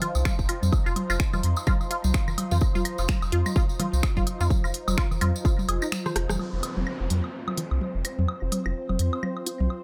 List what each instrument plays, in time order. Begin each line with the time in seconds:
Already playing: synth texture F3 D#4, ambient pad F4 C5 C6
0.02 synth arpeggio sound F4, closed hi-hat, low conga
0.15 analog synth bass C2, tambourine, high woodblock
0.25 synth arpeggio sound F4, finger snap, kick, high tom, tambourine
0.39 analog synth bass F1, kick, tambourine
0.49 synth arpeggio sound F4, closed hi-hat, high woodblock
0.63 analog synth bass F2, high tom, tambourine
0.72 kick, tambourine, high woodblock
0.86 analog synth bass F1, synth arpeggio sound F4, tambourine
0.96 closed hi-hat, high tom, high woodblock
1.10 analog synth bass F1, synth arpeggio sound F4, tambourine, high woodblock
1.20 finger snap, kick, tambourine
1.33 analog synth bass F1, synth arpeggio sound F4, high tom, tambourine, low conga, high woodblock
1.43 analog synth bass F2, closed hi-hat
1.56 tambourine, high woodblock
1.67 synth arpeggio sound F4, kick, high tom, tambourine, high woodblock
1.81 tambourine, high woodblock
1.91 synth arpeggio sound F4, closed hi-hat
2.04 analog synth bass C2, high tom, tambourine
2.14 synth arpeggio sound F4, finger snap, kick, tambourine, high woodblock
2.28 analog synth bass F1, tambourine, low conga, high woodblock
2.38 closed hi-hat, high tom, high woodblock
2.51 analog synth bass F2, synth arpeggio sound F4, tambourine, low conga
2.61 kick, tambourine, high woodblock
2.75 analog synth bass F1, synth arpeggio sound F4, high tom, tambourine
2.85 closed hi-hat, high woodblock
2.98 analog synth bass F1, synth arpeggio sound F4, tambourine, high woodblock
3.08 finger snap, kick, high tom, tambourine
3.22 analog synth bass F1, tambourine, high woodblock
3.32 analog synth bass F2, synth arpeggio sound F4, closed hi-hat
3.46 high tom, tambourine, high woodblock
3.56 synth arpeggio sound F4, kick, tambourine
3.69 tambourine
3.80 synth arpeggio sound F4, closed hi-hat, high tom, low conga, high woodblock
3.93 analog synth bass C2, tambourine
4.03 finger snap, kick, tambourine, high woodblock
4.17 analog synth bass F1, synth arpeggio sound F4, kick, high tom, tambourine
4.27 closed hi-hat, high woodblock
4.40 analog synth bass F2, synth arpeggio sound F4, tambourine
4.50 kick, high tom, tambourine
4.64 analog synth bass F1, synth arpeggio sound F4, tambourine, high woodblock
4.74 closed hi-hat
4.88 analog synth bass F1, high tom, tambourine, high woodblock
4.98 synth arpeggio sound F4, finger snap, kick
5.11 analog synth bass F1, tambourine, low conga, high woodblock
5.21 analog synth bass F2, synth arpeggio sound F4, closed hi-hat, high tom, high woodblock
5.36 tambourine
5.45 synth arpeggio sound F4, kick, tambourine, high woodblock
5.59 high tom, tambourine
5.69 analog synth bass F1, synth arpeggio sound G#4, closed hi-hat, high woodblock
5.82 synth arpeggio sound D#4, tambourine, high woodblock
5.92 finger snap, high tom, tambourine, high woodblock
6.06 synth arpeggio sound C5, cross-stick, tambourine, low conga
6.16 analog synth bass F1, cross-stick, closed hi-hat
6.29 analog synth bass F1, synth arpeggio sound G#4, cross-stick, high tom, tambourine, low conga, high woodblock
6.39 synth texture C4 C5, synth arpeggio sound F4, ambient pad F4, high tom, downlifter, high woodblock
6.53 analog synth bass F1
6.63 closed hi-hat, high woodblock
6.77 analog synth bass F1, synth arpeggio sound F4, ambient pad C5, high tom
6.87 high woodblock
7.00 analog synth bass F1, synth arpeggio sound F4
7.10 analog synth bass F2, closed hi-hat, high tom
7.24 synth arpeggio sound F4, high woodblock
7.32 ambient pad G5
7.48 high tom, high woodblock
7.57 synth arpeggio sound F4, closed hi-hat, low conga
7.71 analog synth bass C2, high woodblock
7.81 synth arpeggio sound F4, high tom
7.95 analog synth bass F1
8.05 synth arpeggio sound F4, closed hi-hat, high woodblock
8.18 analog synth bass F2, high tom
8.28 high woodblock
8.42 analog synth bass F1, synth arpeggio sound F4
8.52 closed hi-hat, high tom, high woodblock
8.66 analog synth bass F1, synth arpeggio sound F4, high woodblock
8.89 analog synth bass F1, synth arpeggio sound F4, high tom, high woodblock
8.99 analog synth bass F2, closed hi-hat
9.13 high woodblock
9.23 synth arpeggio sound F4, high tom, high woodblock
9.37 high woodblock
9.46 synth arpeggio sound F4, closed hi-hat
9.60 analog synth bass C2, high tom
9.70 synth arpeggio sound F4, high woodblock